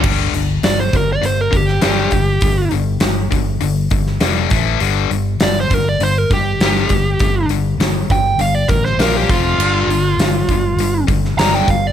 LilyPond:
<<
  \new Staff \with { instrumentName = "Lead electric guitar" } { \time 4/4 \key g \minor \tempo 4 = 100 r4 d''16 c''16 bes'16 d''16 c''16 bes'16 g'4.~ | g'8 r2. r8 | r4 d''16 c''16 bes'16 d''16 c''16 bes'16 g'4.~ | g'8 r4 g''8 f''16 d''16 bes'16 c''16 bes'16 g'16 f'8~ |
f'2~ f'8 r8 bes''16 g''16 f''16 d''16 | }
  \new Staff \with { instrumentName = "Distorted electric guitar" } { \clef bass \time 4/4 \key g \minor <g, d g>8 <g, d>8 <g, d>8 <g, d>8 <g, d>8 <g, d>8 <g, d g>8 <g, d>8 | <g, d>8 <g, d>8 <g, d>8 <g, d>8 <g, d>8 <g, d>8 <g, d g>8 <a, e a>8 | <g, d g>8 <g, d>8 <g, d>8 <g, d>8 <g, d>8 <g, d>8 <g, d g>8 <g, d>8 | <g, d>8 <g, d>8 <g, d>8 <g, d>8 <g, d>8 <g, d>8 <bes, f bes>8 <f, c f>8 |
<g, d g>8 <g, d>8 <g, d>8 <g, d>8 <g, d>8 <g, d>8 <g, d g>8 <g, d>8 | }
  \new Staff \with { instrumentName = "Fingered electric bass" } { \clef bass \time 4/4 \key g \minor g,,8 g,,8 g,,8 g,,8 g,,8 g,,8 g,,8 g,,8 | g,,8 g,,8 g,,8 g,,8 g,,8 g,,8 f,,8 a,,8 | g,,8 g,,8 g,,8 g,,8 g,,8 g,,8 g,,8 g,,8 | g,,8 g,,8 g,,8 g,,8 g,,8 a,,8 bes,,8 f,,8 |
g,,8 g,,8 g,,8 g,,8 g,,8 g,,8 g,,8 g,,8 | }
  \new DrumStaff \with { instrumentName = "Drums" } \drummode { \time 4/4 <cymc bd>8 hho8 <hho sn>8 <hho bd>8 hho8 <hho bd>16 sn16 <hho sn>16 sn16 <hho bd>8 | <hho bd>8 hho8 <hho sn>8 <hho bd>8 hho8 <hho bd>16 sn16 <hho sn>16 sn16 <hho bd>8 | hho8 hho8 <hho sn>8 <hho bd>8 hho8 <hho bd>8 <hho sn>16 sn16 <hho bd>8 | <hho bd>8 hho8 <hho sn>8 <hho bd>8 hho8 <hho bd>16 sn16 <hho sn>8 <hho bd>8 |
cymc8 hho8 <hho sn>8 <hho bd>8 hho8 <hho bd>16 sn16 <hho sn>16 sn16 <hho bd>8 | }
>>